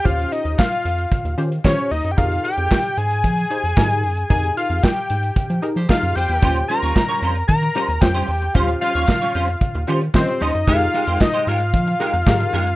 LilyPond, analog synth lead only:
\new Staff \with { instrumentName = "Analog synth lead" } { \time 4/4 \key f \minor \tempo 4 = 113 f''8 ees''8 f''4. r8 des''8 ees''16. g''32 | f''8 g''4 aes''2~ aes''8 | aes''8 f''8 g''4. r8 f''8 g''8~ | g''8 bes''4. bes''4 g''4 |
f''8 f''2 r8 c''8 ees''8 | f''4 ees''8 f''2~ f''8 | }